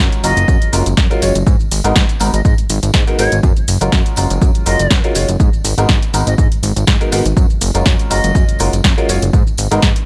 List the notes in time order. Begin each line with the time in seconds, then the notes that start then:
Already playing: G#3 C#4 F4 F#4 A#4
0.12 closed hi-hat, tambourine, shaker
0.23 F#1 G#3 C#4 F4 F#4 A#4 D#5, open hi-hat, tambourine, shaker
0.36 F#1, closed hi-hat, tambourine, shaker
0.48 F#2, kick, tambourine, shaker
0.61 F#1, closed hi-hat, tambourine, shaker
0.72 F#1 G#3 C#4 F4 F#4 A#4, open hi-hat, tambourine, shaker
0.86 F#1, closed hi-hat, tambourine, shaker
0.97 F#2, kick, snare, tambourine, shaker
1.10 G#3 C#4 F4 F#4 A#4, closed hi-hat, tambourine, shaker
1.21 F#1 G#3 C#4 F4 F#4 C#5, open hi-hat, tambourine, shaker
1.35 F#1, closed hi-hat, tambourine, shaker
1.47 G#2, kick, tambourine, shaker
1.59 G#1, tambourine, shaker
1.71 G#1, open hi-hat, tambourine, shaker
1.84 G#1 G#3 B3 D#4 F#4 A#4, closed hi-hat, shaker
1.96 G#2, kick, snare, tambourine, shaker
2.09 closed hi-hat, tambourine, shaker
2.20 G#1 G#3 B3 D#4 F#4 A#4, open hi-hat, tambourine, shaker
2.33 G#1 D#5, closed hi-hat, tambourine, shaker
2.45 G#2 D#5, kick, tambourine, shaker
2.58 G#1, closed hi-hat, tambourine, shaker
2.69 G#1, open hi-hat, tambourine, shaker
2.83 G#1, closed hi-hat, tambourine, shaker
2.94 G#2, kick, snare, shaker
3.07 G#3 B3 D#4 F#4 A#4, closed hi-hat, tambourine, shaker
3.18 G#1 G#3 B3 D#4 F#4 A#4 C#5, open hi-hat, tambourine, shaker
3.32 G#1, closed hi-hat, tambourine, shaker
3.43 F#2, kick, tambourine, shaker
3.56 F#1, closed hi-hat, tambourine, shaker
3.68 F#1, open hi-hat, tambourine, shaker
3.81 F#1 G#3 C#4 F4 F#4 A#4, closed hi-hat, tambourine, shaker
3.92 F#2, kick, snare, tambourine, shaker
4.06 closed hi-hat, tambourine, shaker
4.16 F#1 G#3 C#4 F4 F#4 A#4, open hi-hat, tambourine, shaker
4.30 F#1, closed hi-hat, tambourine, shaker
4.42 F#2, kick, tambourine, shaker
4.54 F#1, closed hi-hat, tambourine, shaker
4.66 F#1 G#3 C#4 F4 F#4 A#4 D#5, open hi-hat, tambourine, shaker
4.79 F#1, closed hi-hat, tambourine, shaker
4.91 F#2, kick, snare, tambourine, shaker
5.04 G#3 C#4 F4 F#4 A#4, closed hi-hat, tambourine, shaker
5.15 F#1 G#3 C#4 F4 F#4 C#5, open hi-hat, tambourine, shaker
5.28 F#1, closed hi-hat, tambourine, shaker
5.40 G#2, kick, tambourine, shaker
5.53 G#1, tambourine, shaker
5.64 G#1, open hi-hat, tambourine, shaker
5.78 G#1 G#3 B3 D#4 F#4 A#4, closed hi-hat, tambourine, shaker
5.89 G#2, kick, snare, tambourine, shaker
6.02 closed hi-hat, tambourine, shaker
6.13 G#1 G#3 B3 D#4 F#4 A#4, open hi-hat, tambourine, shaker
6.27 G#1 D#5, closed hi-hat, tambourine, shaker
6.38 G#2 D#5, kick, tambourine, shaker
6.52 G#1, closed hi-hat, tambourine, shaker
6.63 G#1, open hi-hat, tambourine, shaker
6.76 G#1, closed hi-hat, tambourine, shaker
6.87 G#2, kick, snare, tambourine, shaker
7.00 G#3 B3 D#4 F#4 A#4, closed hi-hat, tambourine, shaker
7.12 G#1 G#3 B3 D#4 F#4 A#4, open hi-hat, tambourine, shaker
7.25 G#1, closed hi-hat, tambourine, shaker
7.37 F#2, kick, tambourine, shaker
7.50 F#1, tambourine, shaker
7.61 F#1, open hi-hat, tambourine, shaker
7.74 F#1 G#3 C#4 F4 F#4 A#4, closed hi-hat, tambourine, shaker
7.86 F#2, kick, snare, tambourine, shaker
7.99 closed hi-hat, tambourine, shaker
8.10 F#1 G#3 C#4 F4 F#4 A#4 D#5, open hi-hat, tambourine, shaker
8.24 F#1, closed hi-hat, tambourine, shaker
8.35 F#2, kick, tambourine, shaker
8.48 F#1, closed hi-hat, tambourine, shaker
8.59 F#1 G#3 C#4 F4 F#4 A#4, open hi-hat, tambourine, shaker
8.72 F#1, closed hi-hat, tambourine, shaker
8.84 F#2, kick, snare, tambourine, shaker
8.97 G#3 C#4 F4 F#4 A#4, closed hi-hat, tambourine, shaker
9.08 F#1 G#3 C#4 F4 F#4 C#5, open hi-hat, tambourine, shaker
9.22 F#1, closed hi-hat, tambourine, shaker
9.33 G#2, kick, tambourine, shaker
9.47 G#1, tambourine, shaker
9.57 G#1, open hi-hat, tambourine, shaker
9.71 G#1 G#3 B3 D#4 F#4 A#4, closed hi-hat, tambourine, shaker
9.82 G#2, kick, snare, tambourine, shaker
9.96 closed hi-hat, tambourine, shaker